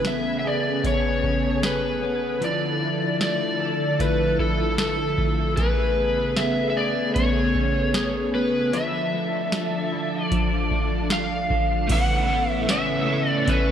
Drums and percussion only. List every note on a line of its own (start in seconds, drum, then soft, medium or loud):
0.05 snare medium
0.05 closed hi-hat medium
0.84 kick medium
0.84 closed hi-hat medium
1.23 kick medium
1.63 snare loud
1.63 closed hi-hat medium
2.42 closed hi-hat medium
3.21 snare medium
3.21 closed hi-hat medium
4.00 kick medium
4.00 closed hi-hat medium
4.39 kick medium
4.78 snare loud
4.78 closed hi-hat medium
5.18 kick medium
5.57 kick loud
5.57 closed hi-hat medium
6.37 snare loud
6.37 closed hi-hat medium
7.16 kick medium
7.16 closed hi-hat medium
7.55 kick medium
7.94 snare loud
7.94 closed hi-hat medium
8.73 closed hi-hat medium
9.52 snare loud
9.52 closed hi-hat medium
10.31 kick medium
10.31 closed hi-hat medium
10.71 kick medium
11.10 snare loud
11.10 closed hi-hat medium
11.50 kick medium
11.89 kick loud
11.89 closed hi-hat medium
11.89 crash medium
12.69 snare loud
12.69 closed hi-hat medium
12.69 tambourine medium
13.48 kick medium
13.48 closed hi-hat medium